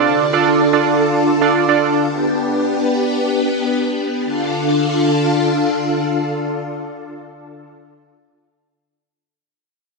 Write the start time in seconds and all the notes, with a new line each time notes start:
Already playing: D3 D4 F4 A4 D5
0.33 D4 F4 A4 D5
0.73 D4 F4 A4 D5
1.41 D4 F4 A4 D5
1.68 D4 F4 A4 D5
2.08 B3 G4
4.25 D3 D4 F4 A4